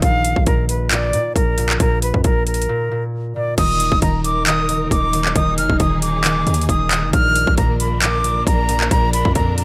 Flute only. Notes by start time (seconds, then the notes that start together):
0.02 F5
0.47 A#4
0.69 B4
0.91 D5
1.36 A#4
1.80 A#4
2.02 B4
2.25 A#4
2.47 A#4
3.35 D5
3.58 D#6
4.02 A#5
4.25 D6
4.47 D#6
4.91 D6
5.36 D#6
5.58 F6
5.80 D#6
6.02 D6
6.69 D#6
7.13 F6
7.58 A#5
7.80 B5
8.02 D6
8.47 A#5
8.91 A#5
9.13 B5
9.35 A#5
9.58 A#5